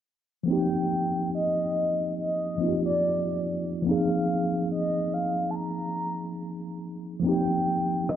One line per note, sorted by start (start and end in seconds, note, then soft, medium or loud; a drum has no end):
0.44 2.53 F3 medium
0.44 2.54 A#3 medium
0.48 2.55 C4 medium
0.48 2.56 D#4 medium
0.48 1.30 G5 loud
0.53 2.58 G4 medium
1.35 2.14 D#5 loud
2.18 2.80 D#5 medium
2.57 3.81 F3 soft
2.57 3.83 A#3 soft
2.57 3.85 C4 soft
2.57 3.87 D#4 soft
2.62 2.68 F4 soft
2.68 3.91 G4 soft
2.85 3.41 D5 medium
3.82 7.18 F3 medium
3.82 7.19 A#3 medium
3.86 7.20 C4 medium
3.86 7.21 D#4 medium
3.86 4.67 F5 loud
3.91 7.23 G#4 medium
4.71 5.15 D#5 medium
5.13 5.52 F5 medium
5.51 5.57 A5 medium
5.55 6.82 A#5 loud
7.20 8.16 F3 medium
7.20 8.16 A#3 medium
7.24 8.16 C4 medium
7.24 8.16 D#4 medium
7.24 8.12 G5 loud
7.29 8.16 G4 medium
8.09 8.16 D#5 loud
8.09 cross-stick medium